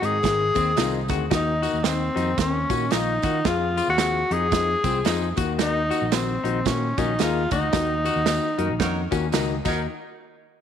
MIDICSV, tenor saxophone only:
0, 0, Header, 1, 2, 480
1, 0, Start_track
1, 0, Tempo, 535236
1, 1177, Time_signature, 4, 2, 24, 8
1, 9517, End_track
2, 0, Start_track
2, 0, Title_t, "Tenor saxophone"
2, 0, Program_c, 0, 66
2, 41, Note_on_c, 0, 68, 112
2, 992, Note_off_c, 0, 68, 0
2, 1187, Note_on_c, 0, 63, 88
2, 1659, Note_on_c, 0, 60, 76
2, 1672, Note_off_c, 0, 63, 0
2, 2140, Note_on_c, 0, 61, 84
2, 2154, Note_off_c, 0, 60, 0
2, 2616, Note_on_c, 0, 63, 90
2, 2629, Note_off_c, 0, 61, 0
2, 3116, Note_on_c, 0, 65, 108
2, 3129, Note_off_c, 0, 63, 0
2, 3489, Note_off_c, 0, 65, 0
2, 3495, Note_on_c, 0, 66, 102
2, 3877, Note_on_c, 0, 68, 117
2, 3891, Note_off_c, 0, 66, 0
2, 4829, Note_off_c, 0, 68, 0
2, 5024, Note_on_c, 0, 63, 99
2, 5502, Note_on_c, 0, 60, 84
2, 5516, Note_off_c, 0, 63, 0
2, 5982, Note_on_c, 0, 61, 99
2, 5996, Note_off_c, 0, 60, 0
2, 6268, Note_on_c, 0, 63, 91
2, 6281, Note_off_c, 0, 61, 0
2, 6467, Note_on_c, 0, 65, 112
2, 6480, Note_off_c, 0, 63, 0
2, 6742, Note_off_c, 0, 65, 0
2, 6748, Note_on_c, 0, 63, 97
2, 8342, Note_off_c, 0, 63, 0
2, 9517, End_track
0, 0, End_of_file